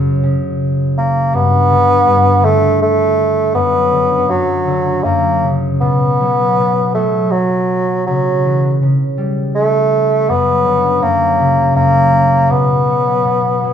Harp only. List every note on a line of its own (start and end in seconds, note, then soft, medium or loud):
0.00 1.39 F#2 soft
0.00 0.22 C#3 medium
0.23 1.39 C#3 medium
1.33 2.06 G2 medium
1.70 2.42 D3 soft
2.07 3.60 G2 soft
2.44 3.60 D3 soft
3.54 4.28 F#2 medium
3.92 4.66 D3 soft
4.29 5.03 F#2 soft
4.67 5.10 D3 medium
5.05 5.86 F#2 medium
5.43 5.86 C#3 soft
5.81 6.57 B2 medium
6.20 6.94 F#3 medium
6.59 8.13 B2 soft
6.96 8.13 F#3 medium
8.07 8.81 C#3 medium
8.45 8.87 E3 soft
8.82 10.35 C#3 medium
9.18 10.35 G3 medium
10.29 11.01 F#2 medium
10.66 11.08 D3 soft
11.02 11.74 F#2 medium
11.39 12.11 C#3 medium
11.75 12.55 F#2 medium
12.13 12.55 C#3 soft
12.50 13.23 B2 medium
12.87 13.62 F#3 soft
13.24 13.73 B2 soft
13.63 13.73 F#3 soft